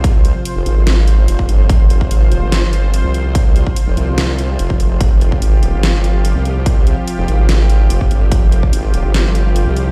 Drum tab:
HH |x-x-x-x-x-x-x-x-|x-x-x-x-x-x-x-x-|x-x-x-x-x-x-x-x-|x-x-x-x-x-x-x-x-|
SD |--------o-------|--------o-------|--------o-------|--------o-------|
BD |o------------o--|o--o------------|o--o---------o--|o--o------------|

HH |x-x-x-x-x-x-x-x-|x-x-x-x-x-x-x-x-|
SD |--------o-------|--------o-------|
BD |o------------o--|o--o------------|